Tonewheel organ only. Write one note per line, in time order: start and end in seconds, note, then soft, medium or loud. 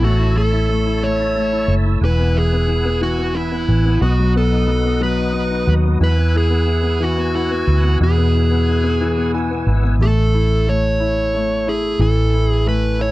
0.03 2.00 C#5 medium
0.03 2.00 E5 medium
0.03 2.00 A5 medium
0.03 3.98 E6 medium
2.01 9.96 B4 medium
2.01 3.99 F#5 medium
2.01 3.99 G#5 medium
4.01 5.99 D#5 medium
4.01 5.99 F#5 soft
4.01 5.99 D#6 medium
6.01 9.96 F#5 medium
6.01 9.96 G#5 medium
6.01 9.96 E6 medium